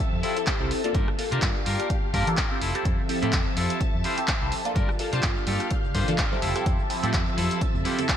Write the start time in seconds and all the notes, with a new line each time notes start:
Already playing: F3 C4 G4 A4 E5 A5
0.13 F2
0.23 C4 E4 F4 G4 A4, open hi-hat
0.36 C4 E4 G4 A4, closed hi-hat
0.47 E4 F4 C5, kick, clap, closed hi-hat
0.60 C2 C4 E4 G4 A4
0.71 open hi-hat
0.84 A#3 D4 F4 A4, closed hi-hat
0.94 G2 F4 G4 A#4 F5, kick, closed hi-hat
1.08 cross-stick
1.18 A#3 D4 F4 A4, muted clean electric guitar stroke, open hi-hat
1.31 C3 A#3 D4 F4 G4 A#4 A5, closed hi-hat
1.42 G2, kick, clap, closed hi-hat
1.66 G2 F4 G4 A#4, open hi-hat
1.80 cross-stick, closed hi-hat
1.90 kick, closed hi-hat
2.13 G2 A#3 D4 F4 G4 A4 A#4, kick, open hi-hat
2.27 E3 A#3 D4 F4 A4, closed hi-hat
2.37 F4 G4 A#4, kick, clap, closed hi-hat
2.51 C4 E4 G4 A4
2.61 F1 F3 E4 F4 A4 E5 A5, open hi-hat
2.75 C4 G4 A4 E5, cross-stick, closed hi-hat
2.85 F2, kick, closed hi-hat
3.09 C4 E4 G4 A4, muted clean electric guitar stroke, open hi-hat
3.22 A2 C4 E4 F4 G4 A4 E5, closed hi-hat
3.33 F2, kick, clap, closed hi-hat
3.57 F2 E4 F4 A4, open hi-hat
3.70 closed hi-hat
3.81 kick, closed hi-hat
3.94 F2
4.04 C4 E4 F4 G4 A4 C5, open hi-hat
4.18 C4 E4 G4 A4, closed hi-hat
4.28 E4 F4 C5, kick, clap, closed hi-hat
4.41 C2 C4 E4 G4 A4
4.52 open hi-hat
4.65 A#3 D4 F4 A4, closed hi-hat
4.75 G2 F4 G4 A#4 F5, kick, closed hi-hat, high conga, shaker
4.89 cross-stick, shaker
4.99 A#3 D4 F4 A4, muted clean electric guitar stroke, open hi-hat
5.12 C3 A#3 D4 F4 G4 C5 A5, closed hi-hat, high conga, shaker
5.23 G2, kick, clap, closed hi-hat, shaker
5.37 shaker
5.47 G2 F4 G4 A4, open hi-hat, high conga
5.60 cross-stick, closed hi-hat, shaker
5.71 kick, closed hi-hat, shaker
5.84 low conga, shaker
5.94 G2 A#3 D4 F4 G4 A4 C5, kick, open hi-hat, high conga
6.08 E3 A#3 D4 F4 A4, closed hi-hat, low conga, shaker
6.18 F4 G4 A#4, kick, clap, closed hi-hat, shaker
6.32 C4 E4 G4 A4, high conga, shaker
6.42 F1 F3 E4 F4 A4 E5 A5, open hi-hat, low conga
6.55 C4 G4 A4 E5, cross-stick, closed hi-hat, shaker
6.66 F2, kick, closed hi-hat, high conga, shaker
6.79 shaker
6.90 C4 E4 G4 A4, muted clean electric guitar stroke, open hi-hat
7.02 A2 C4 E4 F4 G4 A4 E5, closed hi-hat, high conga, shaker
7.13 F2, kick, clap, closed hi-hat, shaker
7.28 shaker
7.37 F2 E4 F4 A4, open hi-hat, high conga
7.51 closed hi-hat, shaker
7.61 kick, closed hi-hat, shaker
7.75 F2, low conga, shaker
7.85 C4 E4 F4 G4 A4, open hi-hat, high conga
7.98 C4 E4 G4 A4, closed hi-hat, low conga, shaker
8.09 E4 F4 A4, kick, clap, closed hi-hat